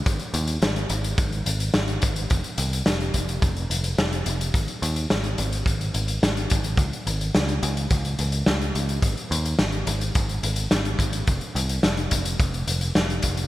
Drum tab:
HH |xxxxxxxxxxxxxxxx|xxxxxxxxxxxxxxxx|xxxxxxxxxxxxxxxx|xxxxxxxxxxxxxxxx|
SD |----o-------o---|----o-------o---|----o-------o---|----o-------o---|
BD |o-------o-----o-|o-----o-o-------|o-------o-----o-|o-------o-------|

HH |xxxxxxxxxxxxxxxx|xxxxxxxxxxxxxxxx|
SD |----o-------o---|----o-------o---|
BD |o-------o-----o-|o-----o-o-----o-|